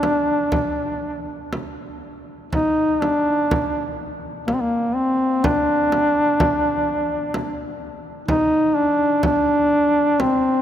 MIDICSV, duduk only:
0, 0, Header, 1, 2, 480
1, 0, Start_track
1, 0, Tempo, 993377
1, 1217, Time_signature, 3, 2, 24, 8
1, 1693, Tempo, 955414
1, 5267, End_track
2, 0, Start_track
2, 0, Title_t, "Duduk"
2, 0, Program_c, 0, 69
2, 0, Note_on_c, 0, 62, 77
2, 736, Note_off_c, 0, 62, 0
2, 1223, Note_on_c, 0, 63, 86
2, 1460, Note_on_c, 0, 62, 88
2, 1468, Note_off_c, 0, 63, 0
2, 1940, Note_off_c, 0, 62, 0
2, 2179, Note_on_c, 0, 58, 69
2, 2216, Note_on_c, 0, 60, 55
2, 2223, Note_off_c, 0, 58, 0
2, 2249, Note_on_c, 0, 58, 72
2, 2257, Note_off_c, 0, 60, 0
2, 2422, Note_on_c, 0, 60, 78
2, 2430, Note_off_c, 0, 58, 0
2, 2668, Note_on_c, 0, 62, 98
2, 2676, Note_off_c, 0, 60, 0
2, 3853, Note_off_c, 0, 62, 0
2, 4096, Note_on_c, 0, 63, 101
2, 4336, Note_on_c, 0, 62, 94
2, 4343, Note_off_c, 0, 63, 0
2, 4571, Note_off_c, 0, 62, 0
2, 4576, Note_on_c, 0, 62, 93
2, 5056, Note_on_c, 0, 60, 88
2, 5063, Note_off_c, 0, 62, 0
2, 5267, Note_off_c, 0, 60, 0
2, 5267, End_track
0, 0, End_of_file